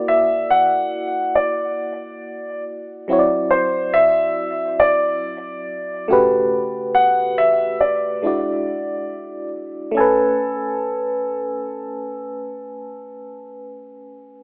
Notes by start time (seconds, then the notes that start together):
Already playing: A#3 E4 F#4 D5
0.08 E5
0.50 F#5
1.35 D5
3.08 F#3 C4 E4 F#4
3.13 C#5
3.19 D5
3.51 C5
3.94 E5
4.80 D5
6.08 C#3 A3 F#4 G4
6.13 B4
6.95 F#5
7.38 E5
7.81 D5
8.22 G#3 D4 E4 F#4
8.27 D5
9.91 A3 C#4
9.97 A4 B4 G#5